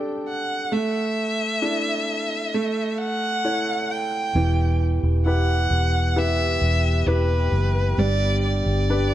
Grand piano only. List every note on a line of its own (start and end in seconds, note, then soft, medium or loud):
0.00 0.68 G3 medium
0.00 0.74 D4 medium
0.00 0.74 G4 soft
0.00 0.73 A4 medium
0.72 2.50 A3 medium
1.62 2.50 D4 soft
1.62 2.51 E4 soft
1.62 2.51 A4 soft
2.54 4.32 A3 medium
3.44 4.33 E4 soft
3.44 4.33 A4 soft
3.44 4.33 C#5 soft
4.36 7.95 E3 medium
5.26 6.14 E4 soft
5.26 6.15 G4 soft
5.26 6.15 B4 soft
6.16 7.05 E4 soft
6.16 7.05 G4 soft
6.16 7.05 B4 medium
7.07 7.96 E4 soft
7.07 7.96 G4 soft
7.07 7.96 B4 soft
7.98 9.14 G3 medium
8.90 9.14 D4 soft
8.90 9.14 G4 soft
8.90 9.14 B4 medium